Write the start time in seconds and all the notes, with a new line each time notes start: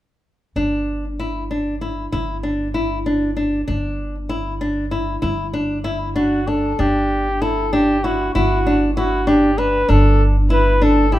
0.56 G1 D4
1.20 E4
1.51 D4
1.81 E4
2.12 G1 E4
2.43 D4
2.74 E4
3.06 D4
3.37 D4
3.68 G1 D4
4.29 E4
4.61 D4
4.91 E4
5.22 G1 E4
5.54 D4
5.84 E4
6.16 D4 F#4
6.47 D4 A4
6.79 G1 D4 G4
7.42 E4 A4
7.73 D4 G4
8.04 E4 F#4
8.34 G1 E4 F#4
8.67 D4
8.97 E4 F#4
9.27 D4 G4
9.58 D4 B4
9.89 G1 D4 A4
10.50 E4 B4
10.82 D4 A4
11.12 E4 G4